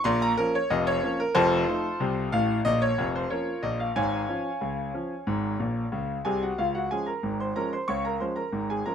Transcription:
0.04 A#1 A#2 C6
0.22 A#5
0.37 F3 A#3 C#4 A#4
0.55 C#5
0.70 F1 F2 D#5
0.87 C#5
1.03 F3 A#3 C#4
1.20 A#4
1.35 F1 F2 F4 A4 C5
1.68 F3 A3 D#4
2.00 C2 C3
2.32 A1 A2 F5
2.65 A#1 A#2 D#5
2.82 C#5
2.98 F1 F2
3.16 C5
3.30 F3 A#3 C#4 F4 A#4 C#5
3.63 A#1 A#2 D#5
3.80 F5
3.96 G#1 G#2 C#5 F5 G#5
4.29 F3 C#4
4.61 C#2 C#3
4.94 F3 C#4
5.27 G#1 G#2
5.59 A#1 A#2
5.92 C#2 C#3
6.25 C2 C3 G#4 G#5
6.43 F#4 F#5
6.58 C#2 C#3 F4 F5
6.75 F#4 F#5
6.91 F3 G#3 C#4 G#4 G#5
7.06 A#4 A#5
7.23 G#1 G#2
7.40 C5 C6
7.56 F3 G#3 C#4 A#4 A#5
7.73 C5 C6
7.88 C#2 C#3 C#5 C#6
8.05 A#4 A#5
8.20 F3 G#3 C#4 C5 C6
8.36 A#4 A#5
8.52 G#1 G#2
8.70 G#4 G#5
8.86 F3 G#3 C#4 A#4 A#5

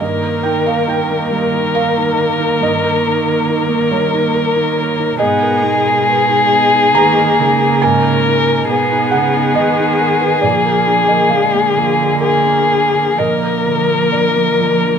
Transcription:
0.00 G2 D#3 A#3 D#4 A#4 D#5
0.23 A#4
0.43 D#4 G5
0.66 A#4 F5
0.87 D#4 G5
1.10 A#3
1.31 G3
1.53 D#4
1.75 A#4 F5
1.97 D#4
2.18 A#4
2.40 D#4
2.61 G2 D#5
2.83 A#4
3.05 D#4
3.27 A#4
3.49 D#4
3.69 A#3
3.91 G3 C#5
4.14 D#4
4.34 A#4
4.56 D#4
4.78 A#4
4.99 D#4
5.19 G#2 B2 G#3 B3 D#4 G#4 D#5 A#5
5.42 A#4
5.63 G#3 D#4
5.85 A#4
6.06 G#3 B4
6.29 D#4
6.53 B3
6.74 D#4
6.95 D#3 A#3 B4 A#5
7.19 D#4
7.39 C#3 A#4
7.62 D#4
7.82 G#2 A#4 G#5
8.05 A#4
8.27 D#4
8.48 A#4
8.69 B2 B3 G#4 B4
8.92 D#4
9.11 C#3 B3 F#5
9.36 D#4
9.55 D#3 B4 D#5
9.79 D#4
10.01 A#4
10.20 D#4 B4
10.42 A#2 D3 F3 A#3 A#4 D5
10.65 A#4
10.87 D4
11.07 A#4 D#5
11.29 D3 G#3 D4 F5
11.54 A#3
11.77 F3 A#3
12.00 D4
12.20 G#4 A#4
12.47 D4
12.70 A#4
12.95 D4
13.18 A#2 F3 A#3 A#4 D#5
13.42 A#4
13.66 D3
13.90 A#4
14.12 D4 D5
14.36 A#3
14.60 F3
14.83 D4

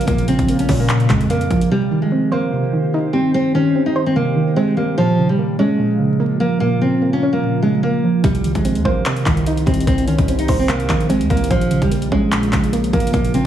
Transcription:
Already playing: C#3 F3 A#3 F4
0.01 closed hi-hat
0.07 A#1 A#2 A#3, kick, closed hi-hat
0.18 closed hi-hat
0.28 C#3 C4, closed hi-hat
0.39 A#1, kick, closed hi-hat
0.48 A#3, closed hi-hat
0.59 C#4, closed hi-hat
0.69 A#2 C#4, kick, open hi-hat
0.80 A#3
0.89 A#2, clap, closed hi-hat
1.00 closed hi-hat
1.10 F2 C#3 G#3, kick, clap, closed hi-hat
1.21 closed hi-hat
1.30 A#3, closed hi-hat
1.41 closed hi-hat
1.51 A#1 F3, kick, closed hi-hat
1.61 closed hi-hat
1.70 C3 D#3 G3 G4 C5
1.91 D#3
2.02 G#3
2.12 C4
2.32 A#3 C5
2.53 C3
2.73 D#3
2.94 D#4
3.13 G3 C4
3.34 C4
3.54 D#3 C#4
3.76 C4
3.86 D#4
3.96 C5
4.06 C4
4.15 C3 A#3
4.36 D#3
4.56 G#3 C4
4.77 G3 A#3
4.97 A#2 C#3 F3 A#3 F4
5.18 C#3
5.29 G3
5.39 A#3
5.59 G#3 C#4
5.79 A#2
5.99 C#3
6.20 A#3
6.40 F3 A#3
6.60 A#2 A#3
6.81 C#3 C4
7.02 A#3
7.13 C#4
7.23 C#4
7.33 A#3
7.43 A#2
7.62 C#3 G#3
7.83 A#3
8.04 F3
8.23 C2 C3 D#3 G3 G4 C5, kick, closed hi-hat
8.35 closed hi-hat
8.44 D#3, closed hi-hat
8.55 A#1 G#3, kick, closed hi-hat
8.65 C4, closed hi-hat
8.75 D#2, closed hi-hat
8.85 A#1 A#3 C5, kick
9.06 C3, clap, closed hi-hat
9.16 closed hi-hat
9.26 C2 D#3, kick, clap, closed hi-hat
9.37 closed hi-hat
9.46 D#4, closed hi-hat
9.57 closed hi-hat
9.66 C2 G3 C4, kick, closed hi-hat
9.74 closed hi-hat
9.80 closed hi-hat
9.87 C2 C4, kick, closed hi-hat
9.98 closed hi-hat
10.07 D#3 C#4, closed hi-hat
10.18 C2, kick, closed hi-hat
10.28 C4, closed hi-hat
10.39 D#4, closed hi-hat
10.48 C2 C5, kick, open hi-hat
10.59 C4
10.69 C3 A#3, clap, closed hi-hat
10.80 closed hi-hat
10.89 A#1 D#3, kick, clap, closed hi-hat
11.00 closed hi-hat
11.09 G#3 C4, closed hi-hat
11.21 D#2, closed hi-hat
11.30 C2 G3 A#3, kick, closed hi-hat
11.37 closed hi-hat
11.44 closed hi-hat
11.50 A#1 A#2 C#3 F3 A#3 F4, kick, closed hi-hat
11.61 closed hi-hat
11.71 C#3, closed hi-hat
11.82 A#1 G3, kick, closed hi-hat
11.91 A#3, closed hi-hat
12.02 closed hi-hat
12.12 A#1 G#3 C#4, kick
12.32 A#2, clap, closed hi-hat
12.43 closed hi-hat
12.52 A#1 C#3, kick, clap, closed hi-hat
12.64 closed hi-hat
12.73 A#3, closed hi-hat
12.84 closed hi-hat
12.93 A#1 F3 A#3, kick, closed hi-hat
13.00 closed hi-hat
13.07 closed hi-hat
13.13 A#1 A#2 A#3, kick, closed hi-hat
13.25 closed hi-hat
13.34 C#3 C4, closed hi-hat

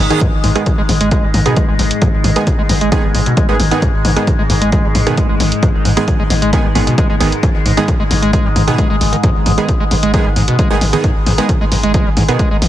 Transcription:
Already playing: G#2 G#3, reverse cymbal
0.00 G#1
0.10 D#3 B3 G#4, closed hi-hat
0.21 G#2 G#3, kick, closed hi-hat, mid tom
0.33 G#1
0.44 G#1 G#2, open hi-hat, mid tom
0.55 D#3 G#3 B3 G#4, closed hi-hat
0.66 G#2, kick, closed hi-hat, mid tom
0.78 G#1 G#3
0.89 G#1 G#2, open hi-hat, mid tom
1.01 G#1 G#3, closed hi-hat
1.11 kick, closed hi-hat, mid tom
1.23 G#1 G3
1.34 G#1 G#2, open hi-hat, mid tom
1.46 B2 D#3 B3 G#4, closed hi-hat
1.56 G#3, kick, closed hi-hat, mid tom
1.68 G#1 G#3
1.79 G#1, open hi-hat, mid tom
1.91 closed hi-hat
2.02 G#2, kick, closed hi-hat, mid tom
2.13 G#1
2.24 G#1 G#2, open hi-hat, mid tom
2.36 D#3 G#3 B3 G#4, closed hi-hat
2.47 G#2, kick, closed hi-hat, mid tom
2.59 G#1 G#3
2.69 G#1 G#2, open hi-hat, mid tom
2.81 G#1 G#3, closed hi-hat
2.92 D#3 B3 G#4, kick, closed hi-hat, mid tom
3.04 G#1 G3
3.14 G#1 G#2, open hi-hat, mid tom
3.26 B2, closed hi-hat
3.37 G#3, kick, closed hi-hat, mid tom
3.49 G#1 D#3 G#3 B3 G#4
3.59 G#1, open hi-hat, mid tom
3.71 D#3 B3 G#4, closed hi-hat
3.82 G#2, kick, closed hi-hat, mid tom
3.94 G#1
4.05 G#1 G#2, open hi-hat, mid tom
4.16 D#3 G#3 B3 G#4, closed hi-hat
4.27 G#2, kick, closed hi-hat, mid tom
4.39 G#1 G#3
4.50 G#1 G#2, open hi-hat, mid tom
4.62 G#1 G#3, closed hi-hat
4.72 G#3, kick, closed hi-hat, mid tom
4.84 G#1 G3
4.95 G#1 G#2, open hi-hat, mid tom
5.07 B2 D#3 B3 G#4, closed hi-hat
5.17 G#3, kick, closed hi-hat, mid tom
5.29 G#1 G#3
5.40 G#1, open hi-hat, mid tom
5.52 closed hi-hat
5.63 G#2, kick, closed hi-hat, mid tom
5.74 G#1
5.85 G#1 G#2, open hi-hat, mid tom
5.97 D#3 G#3 B3 G#4, closed hi-hat
6.08 G#2, kick, closed hi-hat, mid tom
6.19 G#1 G#3
6.30 G#1 G#2, open hi-hat, mid tom
6.42 G#1 G#3, closed hi-hat
6.53 D#3 B3 G#4, kick, closed hi-hat, mid tom
6.65 G#1 G3
6.75 G#1 G#2 D#3 B3 G#4, open hi-hat, mid tom
6.87 B2, closed hi-hat
6.98 G#3, kick, closed hi-hat, mid tom
7.10 G#1 G#3
7.20 G#1 D#3 B3 G#4, open hi-hat, mid tom
7.32 closed hi-hat
7.43 G#2, kick, closed hi-hat, mid tom
7.55 G#1
7.66 G#1 G#2, open hi-hat, mid tom
7.77 D#3 G#3 B3 G#4, closed hi-hat
7.88 G#2, kick, closed hi-hat, mid tom
8.00 G#1 G#3
8.11 G#1 G#2, open hi-hat, mid tom
8.22 G#1 G#3, closed hi-hat
8.33 kick, closed hi-hat, mid tom
8.45 G#1 G3
8.56 G#1 G#2, open hi-hat, mid tom
8.67 B2 D#3 B3 G#4, closed hi-hat
8.78 G#3, kick, closed hi-hat, mid tom
8.90 G#1 G#3
9.01 G#1, open hi-hat, mid tom
9.13 D#3, closed hi-hat
9.23 G#2, kick, closed hi-hat, mid tom
9.35 G#1
9.46 G#1 G#2, open hi-hat, mid tom
9.58 D#3 G#3 B3 G#4, closed hi-hat
9.69 G#2, kick, closed hi-hat, mid tom
9.80 G#1 G#3
9.91 G#1 G#2, open hi-hat, mid tom
10.03 G#1 G#3, closed hi-hat
10.14 D#3 B3 G#4, kick, closed hi-hat, mid tom
10.25 G#1 G3
10.36 G#1 G#2, open hi-hat, mid tom
10.48 B2, closed hi-hat
10.59 G#3, kick, closed hi-hat, mid tom
10.70 G#1 D#3 G#3 B3 G#4
10.81 G#1, open hi-hat, mid tom
10.93 D#3 B3 G#4, closed hi-hat
11.04 G#2, kick, closed hi-hat, mid tom
11.16 G#1
11.26 G#1 G#2, open hi-hat, mid tom
11.38 D#3 G#3 B3 G#4, closed hi-hat
11.49 G#2, kick, closed hi-hat, mid tom
11.61 G#1 G#3
11.72 G#1 G#2, open hi-hat, mid tom
11.83 G#1 G#3, closed hi-hat
11.94 G#3, kick, closed hi-hat, mid tom
12.06 G#1 G3
12.17 G#1 G#2, open hi-hat, mid tom
12.28 B2 D#3 B3 G#4, closed hi-hat
12.39 G#3, kick, closed hi-hat, mid tom
12.51 G#1 G#3
12.62 G#1, open hi-hat, mid tom

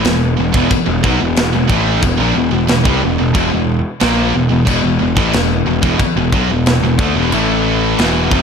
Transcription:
0.05 E1 E2 B2, snare, china
0.38 E1 E2 B2
0.54 E1 E2 B2, kick
0.71 muted picked electric bass stroke, muted distorted electric guitar stroke, kick, china
0.87 E1 E2 B2
1.04 B1 B2 F#3, kick
1.21 E1 E2 B2
1.36 snare, china
1.55 E1 E2 B2
1.67 A1 A2, kick
1.72 A2 E3 A3
2.03 E1 E2 B2, kick, china
2.19 A#1 A#2 F3
2.36 E1 E2 B2
2.53 E1 E2 B2
2.68 E1 E2 B2, snare, china
2.85 C2 C3 G3, kick
3.02 E1 E2 B2
3.19 E1 E2 B2
3.35 E1 E2 B2, kick, china
3.52 E1 E2 B2
4.00 A#1 A#2 F3 A#3, snare, china
4.35 E1 E2 B2
4.49 E1 E2 B2
4.53 E2
4.67 E1 E2 B2, kick, china
4.82 E1 E2 B2
4.87 E2 B2
5.01 E1 E2 B2
5.17 A1 A2 E3, kick
5.33 E1 E2 B2, snare, china
5.67 E1 E2 B2
5.82 E1 E2 B2, kick
5.99 muted picked electric bass stroke, muted distorted electric guitar stroke, kick, china
6.16 E1 E2 B2
6.32 B1 B2 F#3, kick
6.49 E1 E2 B2
6.66 snare, china
6.82 E1 E2 B2
6.98 D2 D3 A3, kick
7.16 E1 E2 B2
7.32 A1 A2 E3 A3, china
7.98 E1 E2 B2 E3, snare, china
8.31 F1 F2 C3 F3, kick

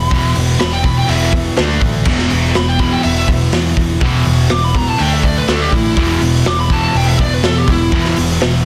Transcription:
Already playing: B2 B5
0.11 E1 E2 B2 E3, kick, open hi-hat
0.35 E1 E2 B2, open hi-hat
0.60 E1 E2 B2 B5, snare, open hi-hat
0.72 G5
0.83 E2 B2 E3 B5, kick, open hi-hat
0.98 G5
1.08 E1 E2 B2 E3 E5, open hi-hat
1.32 E2 B2, kick, open hi-hat
1.57 D2 D3 A3 D4, snare, open hi-hat
1.81 A1 D3 A3, kick, open hi-hat
2.05 E1 E2 B2 E3, kick, crash
2.19 snare
2.30 E1 E2 B2, open hi-hat
2.54 E1 E2 B2 B5, snare, open hi-hat
2.68 G5
2.79 E2 B2 E3 B5, kick, open hi-hat
2.92 G5
3.03 E1 E2 B2 E5, open hi-hat
3.28 E1 E2 B2, kick, open hi-hat
3.52 E2 B2, snare, open hi-hat
3.77 E1 E2 B2, kick, open hi-hat
4.00 E1 E2 B2 E3, kick, open hi-hat
4.06 E3
4.25 E1 E2 B2, open hi-hat
4.49 E1 E2 B2 D6, snare, open hi-hat
4.64 B5
4.74 E2 B2 E3 A#5, kick, open hi-hat
4.89 A5
4.98 D2 D3 A3 D4 G5, open hi-hat
5.13 E5
5.23 D3 A3 D5, kick, open hi-hat
5.37 B4
5.48 D2 D3 A3 D4 A4, snare, open hi-hat
5.62 G4
5.72 A1 D3 A3 E4, kick, open hi-hat
5.97 E1 E2 B2 E3, kick, open hi-hat
6.21 E1 E2 B2, open hi-hat
6.45 E1 E2 B2 D6, snare, open hi-hat
6.60 B5
6.70 E2 B2 E3 A5, kick, open hi-hat
6.84 A5
6.94 E1 E2 B2 G5, open hi-hat
7.07 E5
7.19 E1 E2 B2 D5, kick, open hi-hat
7.34 B4
7.43 E2 B2 A4, snare, open hi-hat
7.58 G4
7.68 E1 E2 B2 E4, kick, open hi-hat
7.92 E1 E2 B2 E3, kick, open hi-hat
8.05 snare
8.16 E1 E2 B2, open hi-hat
8.41 E1 E2 B2, snare, open hi-hat

